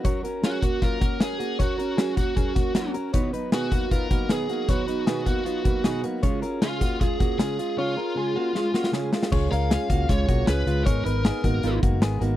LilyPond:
<<
  \new Staff \with { instrumentName = "Lead electric guitar" } { \time 4/4 \key cis \mixolydian \tempo 4 = 155 r4 fis'4 ais'4 gis'4 | fis'4. fis'2 r8 | r4 fis'4 ais'4 gis'4 | fis'4. fis'2 r8 |
r4 eis'4 gis'4 gis'4 | eis'2. r4 | r8 eis''4. cis''4 b'4 | ais'8 ais'2 r4. | }
  \new Staff \with { instrumentName = "Clean electric guitar" } { \time 4/4 \key cis \mixolydian <fis' cis''>8 <cis' ais'>8 <cis' gis'>8 <ais fis'>8 <ais eis'>8 <ais fis'>8 <cis' gis'>8 <ais fis'>8 | <fis' cis''>8 <cis' ais'>8 <cis' gis'>8 <ais fis'>8 <cis' gis'>8 <ais fis'>8 <ais fis'>8 <cis' ais'>8 | <fis' cis''>8 <dis' b'>8 <b gis'>8 <ais fis'>8 <b eis'>8 <ais fis'>8 <b gis'>8 <ais fis'>8 | <fis' cis''>8 <dis' b'>8 <b gis'>8 <ais fis'>8 <b eis'>8 <ais fis'>8 <b gis'>8 <ais fis'>8 |
<eis' cis''>8 <cis' ais'>8 <cis' gis'>8 <ais fis'>8 <gis eis'>8 <ais fis'>8 <cis' gis'>8 <gis eis'>8 | <eis' cis''>8 <cis' ais'>8 <cis' gis'>8 <ais fis'>8 <gis eis'>8 <ais fis'>8 <cis' gis'>8 <gis eis'>8 | <eis' cis''>8 <cis' ais'>8 <cis' gis'>8 <ais fis'>8 <gis eis'>8 <ais fis'>8 <cis' gis'>8 <gis eis'>8 | <gis' cis''>8 <dis' b'>8 <b gis'>8 <ais fis'>8 <gis eis'>8 <ais fis'>8 <b gis'>8 <ais fis'>8 | }
  \new Staff \with { instrumentName = "Steel-string acoustic guitar" } { \time 4/4 \key cis \mixolydian <fis cis' fis' ais'>8 <cis' fis' ais'>8 <fis cis' fis' ais'>8 <cis' fis' ais'>8 <fis cis' fis' ais'>8 <cis' fis' ais'>8 <fis cis' fis' ais'>8 <cis' fis' ais'>8 | <fis cis' fis' ais'>8 <cis' fis' ais'>8 <fis cis' fis' ais'>8 <cis' fis' ais'>8 <fis cis' fis' ais'>8 <cis' fis' ais'>8 <fis cis' fis' ais'>8 <cis' fis' ais'>8 | <b, dis fis b dis' b'>8 <fis b dis' b'>8 <b, dis fis b dis' b'>8 <fis b dis' b'>8 <fis b dis' b'>8 <fis b dis' b'>8 <b, dis fis b dis' b'>8 <fis b dis' b'>8 | <b, dis fis b dis' b'>8 <fis b dis' b'>8 <b, dis fis b dis' b'>8 <fis b dis' b'>8 <fis b dis' b'>8 <fis b dis' b'>8 <b, dis fis b dis' b'>8 <fis b dis' b'>8 |
<cis gis cis' eis' gis'>8 <cis' eis' gis'>8 <cis gis cis' eis' gis'>8 <cis' eis' gis'>8 <gis cis' eis' gis'>8 <cis' eis' gis'>8 <cis gis cis' eis' gis'>8 <cis' eis' gis'>8 | <cis gis cis' eis' gis'>8 <cis' eis' gis'>8 <cis gis cis' eis' gis'>8 <cis' eis' gis'>8 <gis cis' eis' gis'>8 <cis' eis' gis'>8 <cis gis cis' eis' gis'>8 <cis' eis' gis'>8 | <cis gis cis' eis' gis'>8 <cis' eis' gis'>8 <gis cis' eis' gis'>8 <cis' eis' gis'>8 <cis gis cis' eis' gis'>8 <cis' eis' gis'>8 <gis cis' eis' gis'>8 <cis' eis' gis'>8 | <gis, dis gis b dis' ais'>8 <gis b dis' ais'>8 <gis b dis' ais'>8 <gis b dis' ais'>8 <gis, dis gis b dis' ais'>8 <gis b dis' ais'>8 <gis b dis' ais'>8 <gis b dis' ais'>8 | }
  \new Staff \with { instrumentName = "Fingered electric bass" } { \clef bass \time 4/4 \key cis \mixolydian r1 | r1 | r1 | r1 |
r1 | r1 | cis,8 cis,8. r16 cis,8 cis,8 b,,8 cis,8 cis,8 | gis,,8 gis,,8. r16 gis,,8 gis,,8 fis,,8 gis,,8 gis,,8 | }
  \new DrumStaff \with { instrumentName = "Drums" } \drummode { \time 4/4 <hh bd>8 hh8 <hh sn>8 <hh bd>8 <hh bd>8 <hh bd>8 <hh sn>8 hh8 | <hh bd>8 hh8 <hh sn>8 <hh bd>8 <hh bd>8 <hh bd>8 <hh sn>8 hh8 | <hh bd>8 hh8 <hh sn>8 <hh bd>8 <hh bd>8 <hh bd>8 <hh sn>8 hh8 | <hh bd>8 hh8 <hh sn>8 <hh bd>8 hh8 <hh bd>8 <hh sn>8 hh8 |
<hh bd>8 hh8 <hh sn>8 <hh bd>8 <hh bd>8 <hh bd>8 <hh sn>8 hh8 | r4 r4 sn8 sn16 sn16 sn8 sn16 sn16 | <cymc bd>8 hh8 <hh sn>8 <hh bd>8 <hh bd>8 <hh bd>8 <hh sn>8 hh8 | <hh bd>8 hh8 <hh sn>8 <hh bd>8 hh8 <hh bd>8 <hh sn>8 hh8 | }
>>